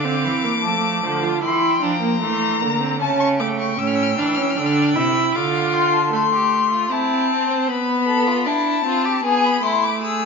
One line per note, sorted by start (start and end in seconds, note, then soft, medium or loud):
0.00 0.26 D3 medium
0.00 0.59 F5 medium
0.00 1.39 D6 medium
0.05 0.45 C4 medium
0.24 0.65 E3 medium
0.44 0.65 A#3 medium
0.63 1.03 F3 medium
0.63 1.05 A3 medium
0.63 1.41 A5 medium
1.04 1.42 D3 medium
1.04 1.25 F3 medium
1.24 1.43 F4 medium
1.42 1.82 E3 medium
1.42 1.81 E4 loud
1.42 2.20 G5 medium
1.42 1.84 C6 medium
1.82 2.23 F3 medium
1.82 2.01 D4 medium
1.82 3.00 A#5 medium
2.02 2.21 A#3 medium
2.21 2.63 E3 medium
2.21 2.62 A3 loud
2.21 2.62 C6 medium
2.61 3.03 D3 medium
2.61 2.82 A#3 medium
2.61 3.00 A#5 medium
2.81 3.00 C4 medium
3.00 3.79 C#3 medium
3.00 3.42 C#4 loud
3.00 3.19 A5 medium
3.00 3.39 A5 medium
3.20 3.28 C#6 medium
3.40 3.79 A3 medium
3.40 5.37 G5 medium
3.40 3.47 D6 medium
3.59 3.80 C#6 medium
3.79 4.20 A2 medium
3.79 4.17 C#4 loud
3.79 3.89 E6 medium
3.87 3.97 F6 medium
3.95 4.04 E6 medium
4.03 4.12 F6 medium
4.11 4.20 E6 medium
4.18 4.57 E3 medium
4.18 4.39 D4 loud
4.18 4.28 F6 medium
4.26 4.36 E6 medium
4.35 4.58 C#4 medium
4.35 4.44 F6 medium
4.42 4.52 E6 medium
4.50 4.60 F6 medium
4.56 4.95 D3 medium
4.56 4.97 D4 loud
4.56 4.68 E6 medium
4.66 4.75 F6 medium
4.74 4.83 E6 medium
4.82 4.91 F6 medium
4.89 5.34 E6 medium
4.96 5.34 C3 medium
4.96 5.37 E4 loud
5.34 6.12 D3 medium
5.34 6.12 F4 loud
5.34 5.75 F5 medium
5.34 5.75 D6 medium
5.73 5.95 G5 medium
5.73 6.12 C6 medium
5.93 6.13 A5 medium
6.13 6.89 A3 medium
6.13 6.21 A4 loud
6.13 6.93 C6 medium
6.33 6.71 G4 medium
6.71 6.93 F4 medium
6.91 7.70 C4 loud
6.91 7.30 E4 medium
6.91 7.68 A5 loud
7.30 7.51 C4 loud
7.50 7.71 C5 loud
7.68 8.48 B3 loud
7.68 8.07 B4 loud
7.68 8.48 B5 loud
8.07 8.29 A4 loud
8.27 8.48 F4 loud
8.46 8.84 D4 medium
8.46 8.85 E4 loud
8.46 9.24 A5 medium
8.85 9.23 C4 medium
8.85 9.06 F4 loud
9.05 9.24 G4 loud
9.24 9.62 B3 loud
9.24 9.62 G#4 loud
9.24 9.46 G#5 loud
9.44 9.65 B5 medium
9.63 10.25 A3 loud
9.63 10.02 E4 loud
9.63 9.85 C6 medium
9.83 10.01 D6 medium
10.02 10.25 G#4 medium
10.02 10.25 E6 loud